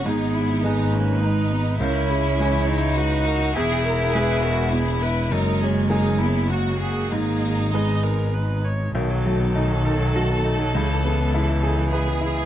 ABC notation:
X:1
M:3/4
L:1/16
Q:1/4=102
K:G#m
V:1 name="Violin section"
D2 E2 D2 C2 D4 | E8 F4 | G2 A2 G2 F2 E4 | D2 C2 D2 E2 F2 G2 |
D8- D2 z2 | [K:Bmix] A12- | A8 G4 |]
V:2 name="Grand piano"
G,,4 [G,DG]8 | C,,4 [E,G,G]8 | E,,4 [G,B,G]8 | F,,4 [G,A,G]8 |
G,,4 [G,B,G]8 | [K:Bmix] B,,,2 F,2 D2 A2 F2 D2 | C,,2 B,2 E2 G2 B2 E2 |]
V:3 name="Viola"
G4 B8 | A2 G2 c4 B2 A2 | G2 G2 B2 A2 G2 B2 | A2 G2 G4 F2 F2 |
G4 d2 A2 B2 c2 | [K:Bmix] D, F, A, B, A, F, D, F, A, B, A, F, | C, E, G, B, G, E, C, E, G, B, G, E, |]
V:4 name="Cello"
B,6 A,2 G,2 B,2 | C6 D6 | E8 B,2 z2 | G,6 B,2 A,4 |
A,4 G,6 z2 | [K:Bmix] D,12 | E,12 |]
V:5 name="Double bass" clef=bass
G,,,12 | C,,12 | E,,,12 | F,,,12 |
G,,,12 | [K:Bmix] B,,,12 | C,,12 |]